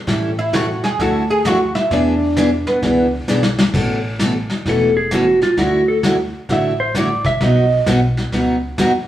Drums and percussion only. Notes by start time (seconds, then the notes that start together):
0.07 brush sweep, kick, snare
0.53 kick, snare, hi-hat pedal
0.84 snare
0.99 brush sweep, kick, snare
1.45 kick, snare, hi-hat pedal
1.75 snare
1.91 brush sweep, kick, snare
2.36 kick, snare, hi-hat pedal
2.67 snare
2.82 brush sweep, kick, snare
3.28 snare, hi-hat pedal
3.43 snare
3.59 snare
3.74 brush sweep, kick, snare, crash
4.19 kick, snare, hi-hat pedal
4.50 snare
4.65 brush sweep, kick, snare
5.11 kick, snare, hi-hat pedal
5.42 snare
5.57 brush sweep, kick, snare
6.03 kick, snare, hi-hat pedal
6.49 brush sweep, kick, snare
6.95 kick, snare, hi-hat pedal
7.24 kick, snare
7.41 brush sweep, kick, snare
7.86 kick, snare, hi-hat pedal
8.17 snare
8.32 brush sweep, kick, snare
8.78 kick, snare, hi-hat pedal